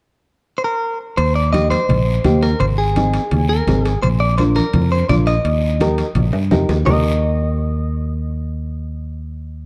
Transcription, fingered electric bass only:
0, 0, Header, 1, 2, 480
1, 0, Start_track
1, 0, Key_signature, -3, "major"
1, 0, Tempo, 355872
1, 1590, Time_signature, 4, 2, 24, 8
1, 13028, End_track
2, 0, Start_track
2, 0, Title_t, "Fingered electric bass"
2, 0, Program_c, 0, 33
2, 1590, Note_on_c, 0, 39, 85
2, 2360, Note_off_c, 0, 39, 0
2, 2554, Note_on_c, 0, 34, 92
2, 2938, Note_off_c, 0, 34, 0
2, 3028, Note_on_c, 0, 39, 87
2, 3415, Note_off_c, 0, 39, 0
2, 3514, Note_on_c, 0, 32, 92
2, 4282, Note_off_c, 0, 32, 0
2, 4476, Note_on_c, 0, 39, 91
2, 4859, Note_off_c, 0, 39, 0
2, 4955, Note_on_c, 0, 32, 89
2, 5338, Note_off_c, 0, 32, 0
2, 5438, Note_on_c, 0, 34, 89
2, 6204, Note_off_c, 0, 34, 0
2, 6388, Note_on_c, 0, 41, 95
2, 6774, Note_off_c, 0, 41, 0
2, 6868, Note_on_c, 0, 34, 87
2, 7253, Note_off_c, 0, 34, 0
2, 7345, Note_on_c, 0, 39, 86
2, 8115, Note_off_c, 0, 39, 0
2, 8296, Note_on_c, 0, 34, 96
2, 8494, Note_off_c, 0, 34, 0
2, 8548, Note_on_c, 0, 43, 81
2, 8765, Note_off_c, 0, 43, 0
2, 8781, Note_on_c, 0, 41, 75
2, 9000, Note_off_c, 0, 41, 0
2, 9024, Note_on_c, 0, 39, 83
2, 9242, Note_off_c, 0, 39, 0
2, 9265, Note_on_c, 0, 39, 84
2, 13028, Note_off_c, 0, 39, 0
2, 13028, End_track
0, 0, End_of_file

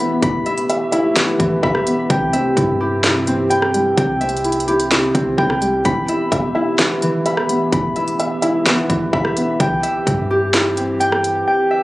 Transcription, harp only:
0, 0, Header, 1, 2, 480
1, 0, Start_track
1, 0, Key_signature, 1, "minor"
1, 0, Tempo, 468750
1, 230, Time_signature, 4, 2, 24, 8
1, 12114, End_track
2, 0, Start_track
2, 0, Title_t, "Harp"
2, 0, Program_c, 0, 46
2, 0, Note_on_c, 0, 52, 75
2, 0, Note_on_c, 0, 59, 77
2, 0, Note_on_c, 0, 64, 91
2, 0, Note_on_c, 0, 76, 88
2, 0, Note_on_c, 0, 83, 97
2, 232, Note_off_c, 0, 83, 0
2, 236, Note_on_c, 0, 83, 96
2, 320, Note_off_c, 0, 76, 0
2, 472, Note_on_c, 0, 76, 83
2, 945, Note_off_c, 0, 64, 0
2, 949, Note_on_c, 0, 64, 86
2, 1181, Note_off_c, 0, 59, 0
2, 1185, Note_on_c, 0, 59, 77
2, 1413, Note_off_c, 0, 52, 0
2, 1425, Note_on_c, 0, 52, 78
2, 1663, Note_off_c, 0, 83, 0
2, 1675, Note_on_c, 0, 83, 99
2, 2158, Note_on_c, 0, 79, 90
2, 2201, Note_off_c, 0, 52, 0
2, 2236, Note_off_c, 0, 76, 0
2, 2387, Note_on_c, 0, 76, 85
2, 2873, Note_on_c, 0, 67, 88
2, 3059, Note_off_c, 0, 83, 0
2, 3101, Note_off_c, 0, 64, 0
2, 3105, Note_on_c, 0, 64, 79
2, 3352, Note_on_c, 0, 60, 75
2, 3413, Note_off_c, 0, 59, 0
2, 3581, Note_off_c, 0, 79, 0
2, 3585, Note_on_c, 0, 79, 101
2, 4066, Note_off_c, 0, 79, 0
2, 4070, Note_on_c, 0, 79, 91
2, 4151, Note_off_c, 0, 76, 0
2, 4308, Note_on_c, 0, 76, 86
2, 4784, Note_off_c, 0, 67, 0
2, 4788, Note_on_c, 0, 67, 82
2, 5032, Note_off_c, 0, 64, 0
2, 5036, Note_on_c, 0, 64, 69
2, 5264, Note_off_c, 0, 60, 0
2, 5268, Note_on_c, 0, 60, 78
2, 5503, Note_off_c, 0, 79, 0
2, 5507, Note_on_c, 0, 79, 102
2, 5992, Note_on_c, 0, 83, 102
2, 6053, Note_off_c, 0, 60, 0
2, 6072, Note_off_c, 0, 76, 0
2, 6236, Note_on_c, 0, 76, 87
2, 6704, Note_off_c, 0, 64, 0
2, 6708, Note_on_c, 0, 64, 92
2, 6945, Note_on_c, 0, 59, 78
2, 7097, Note_off_c, 0, 79, 0
2, 7190, Note_on_c, 0, 52, 76
2, 7198, Note_off_c, 0, 67, 0
2, 7424, Note_off_c, 0, 83, 0
2, 7436, Note_on_c, 0, 83, 97
2, 7913, Note_off_c, 0, 83, 0
2, 7917, Note_on_c, 0, 83, 99
2, 8000, Note_off_c, 0, 76, 0
2, 8152, Note_on_c, 0, 76, 79
2, 8625, Note_off_c, 0, 64, 0
2, 8629, Note_on_c, 0, 64, 86
2, 8860, Note_off_c, 0, 59, 0
2, 8864, Note_on_c, 0, 59, 81
2, 9093, Note_off_c, 0, 52, 0
2, 9105, Note_on_c, 0, 52, 79
2, 9343, Note_off_c, 0, 83, 0
2, 9355, Note_on_c, 0, 83, 98
2, 9838, Note_on_c, 0, 79, 94
2, 9881, Note_off_c, 0, 52, 0
2, 9916, Note_off_c, 0, 76, 0
2, 10067, Note_on_c, 0, 76, 87
2, 10553, Note_on_c, 0, 67, 89
2, 10740, Note_off_c, 0, 83, 0
2, 10782, Note_off_c, 0, 64, 0
2, 10786, Note_on_c, 0, 64, 79
2, 11032, Note_on_c, 0, 60, 73
2, 11094, Note_off_c, 0, 59, 0
2, 11262, Note_off_c, 0, 79, 0
2, 11266, Note_on_c, 0, 79, 103
2, 11746, Note_off_c, 0, 79, 0
2, 11750, Note_on_c, 0, 79, 89
2, 11832, Note_off_c, 0, 76, 0
2, 11988, Note_on_c, 0, 76, 83
2, 12114, Note_off_c, 0, 60, 0
2, 12114, Note_off_c, 0, 64, 0
2, 12114, Note_off_c, 0, 67, 0
2, 12114, Note_off_c, 0, 76, 0
2, 12114, Note_off_c, 0, 79, 0
2, 12114, End_track
0, 0, End_of_file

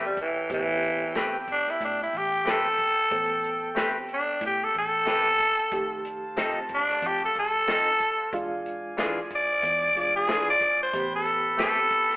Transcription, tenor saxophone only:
0, 0, Header, 1, 2, 480
1, 0, Start_track
1, 0, Tempo, 652174
1, 364, Time_signature, 4, 2, 24, 8
1, 8953, End_track
2, 0, Start_track
2, 0, Title_t, "Tenor saxophone"
2, 0, Program_c, 0, 66
2, 41, Note_on_c, 0, 55, 86
2, 130, Note_off_c, 0, 55, 0
2, 156, Note_on_c, 0, 52, 93
2, 373, Note_off_c, 0, 52, 0
2, 391, Note_on_c, 0, 52, 114
2, 844, Note_off_c, 0, 52, 0
2, 1119, Note_on_c, 0, 62, 103
2, 1252, Note_on_c, 0, 64, 88
2, 1263, Note_off_c, 0, 62, 0
2, 1337, Note_off_c, 0, 64, 0
2, 1360, Note_on_c, 0, 62, 91
2, 1466, Note_off_c, 0, 62, 0
2, 1492, Note_on_c, 0, 64, 87
2, 1601, Note_on_c, 0, 67, 95
2, 1612, Note_off_c, 0, 64, 0
2, 1817, Note_off_c, 0, 67, 0
2, 1844, Note_on_c, 0, 69, 102
2, 2759, Note_off_c, 0, 69, 0
2, 3042, Note_on_c, 0, 62, 97
2, 3259, Note_off_c, 0, 62, 0
2, 3282, Note_on_c, 0, 67, 86
2, 3413, Note_on_c, 0, 69, 84
2, 3424, Note_off_c, 0, 67, 0
2, 3499, Note_off_c, 0, 69, 0
2, 3520, Note_on_c, 0, 69, 112
2, 4437, Note_off_c, 0, 69, 0
2, 4964, Note_on_c, 0, 62, 103
2, 5202, Note_on_c, 0, 67, 97
2, 5213, Note_off_c, 0, 62, 0
2, 5309, Note_off_c, 0, 67, 0
2, 5336, Note_on_c, 0, 69, 90
2, 5422, Note_off_c, 0, 69, 0
2, 5440, Note_on_c, 0, 69, 104
2, 6124, Note_off_c, 0, 69, 0
2, 6883, Note_on_c, 0, 74, 103
2, 7332, Note_off_c, 0, 74, 0
2, 7362, Note_on_c, 0, 74, 93
2, 7468, Note_off_c, 0, 74, 0
2, 7477, Note_on_c, 0, 68, 96
2, 7701, Note_off_c, 0, 68, 0
2, 7727, Note_on_c, 0, 74, 100
2, 7946, Note_off_c, 0, 74, 0
2, 7970, Note_on_c, 0, 72, 89
2, 8187, Note_off_c, 0, 72, 0
2, 8209, Note_on_c, 0, 69, 90
2, 8532, Note_off_c, 0, 69, 0
2, 8555, Note_on_c, 0, 69, 103
2, 8953, Note_off_c, 0, 69, 0
2, 8953, End_track
0, 0, End_of_file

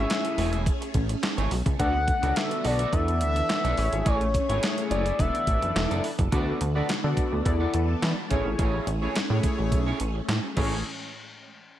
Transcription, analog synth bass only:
0, 0, Header, 1, 2, 480
1, 0, Start_track
1, 0, Key_signature, 3, "major"
1, 0, Tempo, 566038
1, 1522, Time_signature, 4, 2, 24, 8
1, 10004, End_track
2, 0, Start_track
2, 0, Title_t, "Analog synth bass"
2, 0, Program_c, 0, 38
2, 321, Note_on_c, 0, 28, 100
2, 594, Note_off_c, 0, 28, 0
2, 799, Note_on_c, 0, 33, 89
2, 979, Note_off_c, 0, 33, 0
2, 1168, Note_on_c, 0, 32, 96
2, 1253, Note_off_c, 0, 32, 0
2, 1281, Note_on_c, 0, 35, 90
2, 1376, Note_off_c, 0, 35, 0
2, 1407, Note_on_c, 0, 37, 94
2, 1491, Note_off_c, 0, 37, 0
2, 1521, Note_on_c, 0, 38, 111
2, 1794, Note_off_c, 0, 38, 0
2, 1888, Note_on_c, 0, 37, 100
2, 1973, Note_off_c, 0, 37, 0
2, 2242, Note_on_c, 0, 35, 86
2, 2420, Note_off_c, 0, 35, 0
2, 2482, Note_on_c, 0, 40, 113
2, 2723, Note_on_c, 0, 38, 91
2, 2736, Note_off_c, 0, 40, 0
2, 2901, Note_off_c, 0, 38, 0
2, 3089, Note_on_c, 0, 35, 100
2, 3173, Note_off_c, 0, 35, 0
2, 3202, Note_on_c, 0, 33, 94
2, 3297, Note_off_c, 0, 33, 0
2, 3328, Note_on_c, 0, 32, 92
2, 3412, Note_off_c, 0, 32, 0
2, 3442, Note_on_c, 0, 33, 113
2, 3715, Note_off_c, 0, 33, 0
2, 3809, Note_on_c, 0, 32, 99
2, 3893, Note_off_c, 0, 32, 0
2, 4161, Note_on_c, 0, 30, 98
2, 4340, Note_off_c, 0, 30, 0
2, 4403, Note_on_c, 0, 28, 100
2, 4497, Note_off_c, 0, 28, 0
2, 4638, Note_on_c, 0, 33, 93
2, 4734, Note_off_c, 0, 33, 0
2, 4769, Note_on_c, 0, 30, 87
2, 4853, Note_off_c, 0, 30, 0
2, 4881, Note_on_c, 0, 28, 88
2, 4976, Note_off_c, 0, 28, 0
2, 5010, Note_on_c, 0, 30, 87
2, 5094, Note_off_c, 0, 30, 0
2, 5246, Note_on_c, 0, 30, 89
2, 5331, Note_off_c, 0, 30, 0
2, 5362, Note_on_c, 0, 38, 114
2, 5540, Note_off_c, 0, 38, 0
2, 5603, Note_on_c, 0, 38, 107
2, 5781, Note_off_c, 0, 38, 0
2, 5844, Note_on_c, 0, 50, 42
2, 5895, Note_off_c, 0, 50, 0
2, 5969, Note_on_c, 0, 50, 100
2, 6053, Note_off_c, 0, 50, 0
2, 6210, Note_on_c, 0, 38, 95
2, 6294, Note_off_c, 0, 38, 0
2, 6321, Note_on_c, 0, 40, 110
2, 6500, Note_off_c, 0, 40, 0
2, 6564, Note_on_c, 0, 40, 96
2, 6741, Note_off_c, 0, 40, 0
2, 6802, Note_on_c, 0, 52, 97
2, 6897, Note_off_c, 0, 52, 0
2, 7045, Note_on_c, 0, 33, 100
2, 7138, Note_off_c, 0, 33, 0
2, 7170, Note_on_c, 0, 32, 88
2, 7253, Note_off_c, 0, 32, 0
2, 7283, Note_on_c, 0, 33, 114
2, 7461, Note_off_c, 0, 33, 0
2, 7519, Note_on_c, 0, 33, 109
2, 7698, Note_off_c, 0, 33, 0
2, 7761, Note_on_c, 0, 45, 47
2, 7812, Note_off_c, 0, 45, 0
2, 7885, Note_on_c, 0, 45, 97
2, 7971, Note_off_c, 0, 45, 0
2, 8127, Note_on_c, 0, 33, 86
2, 8241, Note_on_c, 0, 35, 97
2, 8253, Note_off_c, 0, 33, 0
2, 8420, Note_off_c, 0, 35, 0
2, 8480, Note_on_c, 0, 33, 97
2, 8659, Note_off_c, 0, 33, 0
2, 8720, Note_on_c, 0, 45, 88
2, 8815, Note_off_c, 0, 45, 0
2, 8962, Note_on_c, 0, 33, 102
2, 9185, Note_off_c, 0, 33, 0
2, 10004, End_track
0, 0, End_of_file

